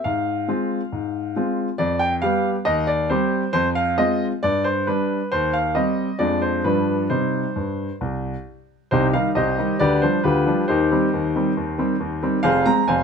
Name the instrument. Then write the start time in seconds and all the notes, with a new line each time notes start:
grand piano
0.04 G#2 F5
0.48 G#3 C4 F4
0.92 G#2
1.36 G#3 C4 F4
1.78 F2 D5
1.99 G5
2.22 G3 B3 G4 F5
2.65 D#2 D#5
2.87 D5
3.10 G3 C4 G4 C5
3.53 F2 C5
3.75 F5
3.98 G#3 C4 F4 D#5
4.43 G2 D5
4.64 C5
4.87 G3 D4 B4
5.32 D#2 C5
5.53 F5
5.75 G3 C4 D#5
6.19 F2 F3 G#3 D4 D5
6.42 C5
6.64 G2 F3 G3 D4 B4
7.10 C3 G3 D#4 C5
7.56 G2
8.01 C2
8.91 C2 C3 D#4 G4 C5
9.13 D#3 G3 D#4 F5
9.35 C2 C3 G4 C5 D#5
9.58 D#3 G3 D#4
9.79 D2 D3 G4 B4 D5
10.02 F3 G3 D4 C5
10.24 D2 D3 F4 G4 B4
10.46 F3 G3 D4
10.68 D#2 D#3 D#4 G4 C5
10.91 D#3 G3 C4
11.13 D#2 D#3
11.35 D#3 G3 C4
11.57 D#2 D#3
11.78 D#3 G3 C4
12.00 D#2 D#3
12.22 D#3 G3 C4
12.43 F1 F2 G#4 C5 F5
12.66 G#3 C4 A#5
12.88 F1 F2 C5 F5 G#5